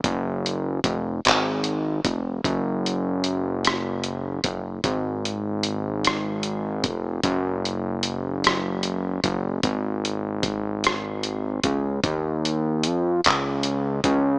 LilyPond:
<<
  \new Staff \with { instrumentName = "Analog synth bass" } { \clef bass \time 6/8 \key dis \minor \tempo 4. = 50 fis,,4 eis,,8 gis,,4 eis,,8 | fis,,2~ fis,,8 fis,,8 | aes,,2~ aes,,8 f,,8 | fis,,2~ fis,,8 fis,,8 |
gis,,2~ gis,,8 cis,8 | dis,4 eis,8 cis,4 cis,8 | }
  \new DrumStaff \with { instrumentName = "Drums" } \drummode { \time 6/8 <hh bd>8 hh8 <hh bd>8 <hc hh>8 hh8 <hh bd>8 | <hh bd>8 hh8 hh8 <hh ss>8 hh8 <hh bd>8 | <hh bd>8 hh8 hh8 <hh ss>8 hh8 <hh bd>8 | <hh bd>8 hh8 hh8 <hh ss>8 hh8 <hh bd>8 |
<hh bd>8 hh8 <hh bd>8 <hh ss>8 hh8 <hh bd>8 | <hh bd>8 hh8 hh8 <hc hh>8 hh8 <hh bd>8 | }
>>